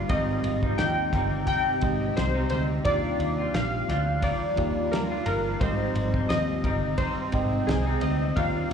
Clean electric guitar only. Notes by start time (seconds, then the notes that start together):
Already playing: D4
0.09 D#3 G3 C4 D#4
0.63 G3 C4 D#4
1.13 D#3 G3 C4 D#4
1.47 D#3 G3 C4 D#4
2.35 G3 C4 D#4
2.85 D#3 G3 D4 F4
3.38 G3 D4 F4
3.89 G3 D4 F4
4.23 D#3 G3 D4 F4
5.10 G3 D4 F4
5.59 D#3 G3 C4 D#4
6.13 G3 C4 D#4
6.64 D#3 G3 C4 D#4
6.98 D#3 G3 C4 D#4
7.86 G3 C4 D#4
8.36 D#3 G3 D4 F4